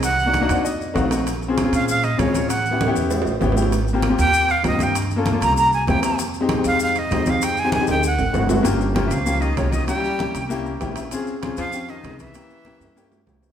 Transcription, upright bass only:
X:1
M:4/4
L:1/8
Q:1/4=195
K:Fm
V:1 name="Upright bass" clef=bass
C,,3 F,,3 B,,,2- | B,,,3 B,,3 =A,,2- | =A,,3 =E,,2 =A,,, _A,,,2- | A,,,3 E,,3 G,,2- |
G,,3 C,,3 F,,2- | F,,3 F,,3 F,,2- | F,,3 =D,,2 A,,, G,,,2 | G,,,3 D,,3 C,,2 |
z3 C,,3 B,,,2 | z3 F,,3 C,,2 | z3 G,,3 C,,2 |]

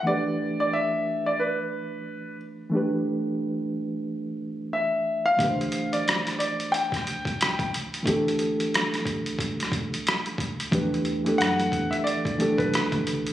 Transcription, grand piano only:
X:1
M:4/4
L:1/16
Q:"Swing 16ths" 1/4=90
K:Em
V:1 name="Grand piano"
d3 d e3 d B6 z2 | z12 e3 =f- | =f3 d3 d2 g6 z2 | z16 |
z4 f3 e d3 B3 z2 |]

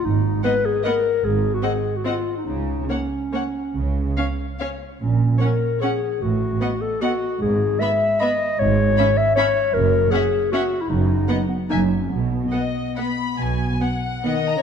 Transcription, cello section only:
X:1
M:3/4
L:1/8
Q:1/4=148
K:F#
V:1 name="Cello section" clef=bass
G,,2 z4 | G,,2 z4 | C,2 z4 | C,2 z4 |
[K:B] A,,2 z4 | =A,,2 z4 | G,,2 z4 | G,,2 z4 |
F,,2 z4 | F,,2 z2 F,,2 | B,,2 z4 | B,,2 z4 |]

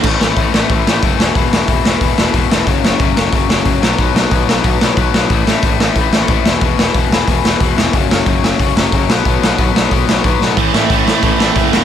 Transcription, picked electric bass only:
X:1
M:4/4
L:1/8
Q:1/4=182
K:A
V:1 name="Picked electric bass" clef=bass
A,,, A,,, A,,, A,,, A,,, A,,, F,,, E,,, | E,,, E,,, E,,, E,,, E,,, E,,, E,,, E,,, | F,,, F,,, F,,, F,,, F,,, F,,, F,,, B,,, | B,,, B,,, B,,, B,,, B,,, B,,, B,,, B,,, |
A,,, A,,, A,,, A,,, A,,, A,,, A,,, E,,, | E,,, E,,, E,,, E,,, E,,, E,,, E,,, E,,, | F,,, F,,, F,,, F,,, F,,, F,,, F,,, B,,, | B,,, B,,, B,,, B,,, B,,, B,,, B,,, B,,, |
A,,, A,,, A,,, A,,, A,,, A,,, F,,, E,,, |]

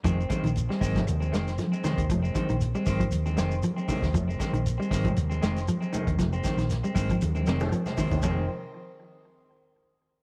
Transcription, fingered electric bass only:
X:1
M:4/4
L:1/16
Q:"Swing 16ths" 1/4=117
K:Fm
V:1 name="Fingered electric bass" clef=bass
F,,,2 z B,,,2 z A,,,2 E,,2 F,,,2 z3 E,, | F,,,2 z B,,,2 z A,,,2 E,,2 F,,,2 z3 E,, | F,,,2 z B,,,2 z A,,,2 E,,2 F,,,2 z3 E,, | F,,,2 z B,,,2 z A,,,2 E,,2 F,,,2 z3 E,, |
F,,,2 z12 z2 |]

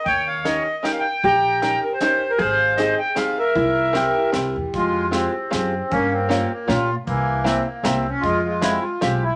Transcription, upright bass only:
X:1
M:3/4
L:1/8
Q:"Swing" 1/4=154
K:Ebmix
V:1 name="Upright bass" clef=bass
E,,4 z2 | B,,,4 z2 | A,,,4 z2 | C,,4 C,, =E,, |
[K:Fm] F,,4 _G,,2 | G,,4 B,,2 | C,,4 C,,2 | F,,4 =B,,,2 |]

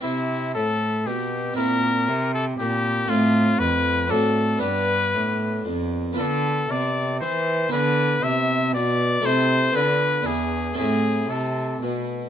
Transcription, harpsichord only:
X:1
M:3/4
L:1/8
Q:1/4=117
K:C
V:1 name="Harpsichord"
[CE]6 | [CE]6 | [A,CF]4 [CD^F]2 | [B,DG]6 |
[K:Am] [B,FA]6 | [B,E^G]6 | [A,EA]2 [B,FA]2 [B,DE]2 | [A,CE]6 |]
V:2 name="Harpsichord" clef=bass
C,2 A,,2 B,,2 | _B,,2 C,2 B,,2 | A,,2 F,,2 A,,2 | G,,2 A,,2 F,,2 |
[K:Am] D,2 C,2 E,2 | D,2 C,2 B,,2 | C,2 D,2 E,,2 | A,,2 C,2 B,,2 |]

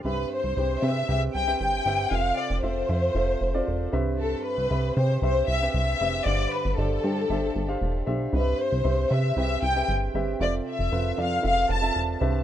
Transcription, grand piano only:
X:1
M:4/4
L:1/16
Q:1/4=116
K:C
V:1 name="Grand piano"
[CGBe]3 z [CGBg]2 [CGBg]2 [CGBg]3 [CGBe]3 [CGBe]2 | [CFAe]3 z [CFAe]2 [CFAe]2 [CFAe]3 [CFAd]3 [CGBe]2- | [CGBe]3 z [CGBe]2 [CGBg]2 [CGBe]3 [CGBg]3 [CGBe]2 | [DGcf]3 z [DGcd]2 [DGcg]2 [DGce]3 [DGcf]3 [DGce]2 |
[CGB_e=e]3 z [CGBe]2 [CGBe]2 [CGBg]3 [CGBe]3 [CGBe]2 | [CFAe]3 z [CFAB]2 [CFAd]2 [CFAe]3 [CFAe]3 [CGBe]2 |]
V:2 name="Grand piano" clef=bass
G,,6 z8 z2 | C,6 z8 G,,2- | G,,4 z12 | [G,,D,]6 z8 z2 |
G,,6 z8 z2 | C,6 z8 G,,2 |]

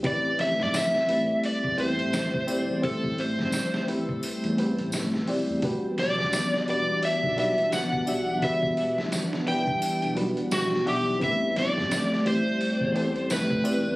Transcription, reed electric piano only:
X:1
M:4/4
L:1/8
Q:"Swing 16ths" 1/4=86
K:Ador
V:1 name="Reed electric piano"
[CEGB]3 [CEGB]2 [CEGc]2 [CEGd] | [CEGc]3 [CEGB]2 [CEGB]2 [CEGd] | [DFGB]3 [DFGB]2 [DFGB]2 [DFGe] | [DFGB]3 [DEGB]2 [G,DFB]2 [DGef] |
[CEGB]3 [CEGc]2 [CEGA]2 [CEGd] |]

